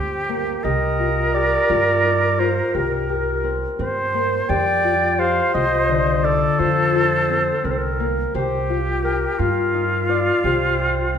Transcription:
0.00 0.54 D2 medium
0.00 2.94 C4 medium
0.00 0.99 D4 medium
0.00 0.99 F4 medium
0.00 0.64 G4 medium
0.00 0.65 G4 medium
0.29 3.51 A#3 medium
0.63 1.55 C2 medium
0.63 1.34 G4 medium
0.63 3.52 A#4 medium
0.63 1.30 D#5 medium
1.00 1.69 F4 medium
1.34 2.74 G4 medium
1.34 2.41 D5 medium
1.70 2.60 G2 medium
1.70 2.39 F4 medium
2.05 4.75 D#4 medium
2.40 4.84 F4 medium
2.40 2.76 C5 medium
2.75 3.65 C2 medium
2.75 3.09 G4 medium
2.75 4.14 A#4 medium
3.09 4.49 G4 medium
3.44 3.79 C4 medium
3.79 4.39 G2 medium
3.79 6.80 C4 medium
3.79 4.51 C5 medium
4.14 7.36 A#3 medium
4.49 5.39 F2 medium
4.49 5.18 G4 medium
4.49 5.20 D5 loud
4.49 5.21 G5 medium
4.84 5.54 F4 medium
5.19 7.54 G4 medium
5.19 6.26 C5 medium
5.19 5.53 F5 medium
5.54 6.45 C2 medium
5.54 6.58 F4 medium
5.54 6.25 D#5 medium
5.89 8.39 D3 medium
6.24 8.94 D#4 medium
6.24 8.07 A4 loud
6.24 6.61 D5 medium
6.59 7.49 F2 medium
6.59 6.94 F4 medium
6.59 7.67 C5 medium
6.94 8.69 F4 medium
7.29 7.64 C4 medium
7.64 8.24 C2 medium
7.64 10.64 C4 medium
7.64 7.73 A#4 medium
7.71 7.80 C5 medium
7.79 8.34 A#4 medium
8.00 11.18 A#3 medium
8.33 9.24 C2 medium
8.33 9.40 G4 medium
8.33 9.04 G4 medium
8.33 8.74 C5 medium
8.70 9.39 F4 medium
9.04 10.43 G4 medium
9.04 10.12 A#4 medium
9.39 10.29 G2 medium
9.39 11.18 F4 medium
9.39 10.09 F4 medium
9.74 11.18 D#4 medium
10.09 11.18 F4 medium
10.09 10.44 D5 medium
10.44 11.18 C2 medium
10.44 10.79 G4 medium
10.44 11.18 C5 medium
10.79 11.18 G4 medium
11.14 11.18 C4 medium

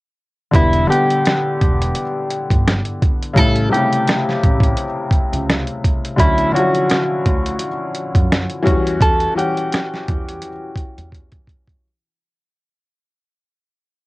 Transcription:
0.51 0.84 E1 loud
0.51 0.81 D3 medium
0.51 0.82 G3 medium
0.51 0.82 B3 medium
0.51 0.83 E4 medium
0.51 kick loud
0.51 closed hi-hat medium
0.56 0.86 E4 loud
0.73 closed hi-hat soft
0.87 2.01 D3 medium
0.87 2.01 G3 medium
0.87 2.02 B3 medium
0.87 3.38 G4 medium
0.87 2.02 F#5 medium
0.92 closed hi-hat medium
1.10 closed hi-hat soft
1.25 snare loud
1.25 closed hi-hat medium
1.61 1.90 E1 medium
1.61 kick medium
1.61 closed hi-hat medium
1.82 closed hi-hat soft
1.95 closed hi-hat medium
2.30 closed hi-hat medium
2.50 2.80 G1 medium
2.50 kick medium
2.50 closed hi-hat soft
2.67 snare loud
2.67 closed hi-hat medium
2.85 closed hi-hat soft
3.02 kick medium
3.02 closed hi-hat medium
3.23 closed hi-hat soft
3.33 3.66 A1 loud
3.33 3.64 C#3 medium
3.33 3.64 G3 medium
3.33 3.65 A3 medium
3.33 3.65 E4 medium
3.33 kick loud
3.33 closed hi-hat medium
3.38 3.69 A4 loud
3.56 closed hi-hat soft
3.69 3.78 C3 medium
3.69 4.84 G3 medium
3.69 4.84 A3 medium
3.69 4.84 E4 medium
3.69 5.44 G4 medium
3.74 4.86 C#3 medium
3.74 closed hi-hat medium
3.93 closed hi-hat soft
4.07 snare loud
4.07 closed hi-hat medium
4.29 snare soft
4.43 4.73 A1 medium
4.43 kick medium
4.43 closed hi-hat medium
4.60 kick medium
4.60 closed hi-hat soft
4.77 closed hi-hat medium
5.11 kick medium
5.11 closed hi-hat medium
5.33 5.62 C#2 medium
5.33 closed hi-hat soft
5.50 snare loud
5.50 closed hi-hat medium
5.67 closed hi-hat soft
5.84 kick medium
5.84 closed hi-hat medium
6.05 closed hi-hat soft
6.16 6.48 D2 loud
6.16 6.46 D3 medium
6.16 6.47 F#3 medium
6.16 6.47 C#4 medium
6.16 6.48 E4 medium
6.16 6.51 E4 loud
6.16 kick loud
6.16 closed hi-hat medium
6.38 closed hi-hat soft
6.52 7.65 D3 medium
6.52 6.61 F3 soft
6.52 7.66 C#4 medium
6.52 7.67 E4 medium
6.52 8.97 F#4 medium
6.56 7.69 F#3 medium
6.56 closed hi-hat medium
6.75 closed hi-hat soft
6.90 snare loud
6.90 closed hi-hat medium
7.26 7.55 D2 medium
7.26 kick medium
7.26 closed hi-hat medium
7.46 closed hi-hat soft
7.59 closed hi-hat medium
7.95 closed hi-hat medium
8.15 8.45 F#2 medium
8.15 kick medium
8.15 closed hi-hat soft
8.32 snare loud
8.32 closed hi-hat medium
8.50 closed hi-hat soft
8.63 9.22 E3 medium
8.63 8.72 F#3 medium
8.63 9.23 C#4 medium
8.63 9.24 F#4 loud
8.67 9.26 E2 medium
8.67 9.26 G3 medium
8.67 kick medium
8.67 closed hi-hat medium
8.87 closed hi-hat soft
9.01 9.33 A4 loud
9.01 kick loud
9.01 closed hi-hat medium
9.20 closed hi-hat soft
9.35 10.48 E3 medium
9.35 10.49 G3 medium
9.35 10.49 C#4 medium
9.35 11.09 G4 medium
9.35 10.50 F#5 medium
9.35 closed hi-hat medium
9.57 closed hi-hat soft
9.72 snare loud
9.72 closed hi-hat medium
9.94 snare soft
10.08 10.38 E2 medium
10.08 kick medium
10.08 closed hi-hat medium
10.29 closed hi-hat soft
10.42 closed hi-hat medium
10.76 kick medium
10.76 closed hi-hat medium
10.98 11.27 E2 medium
10.98 closed hi-hat soft
11.12 kick medium
11.12 closed hi-hat medium
11.32 kick medium
11.32 closed hi-hat soft
11.47 kick medium
11.47 closed hi-hat medium
11.68 kick medium
11.68 closed hi-hat soft

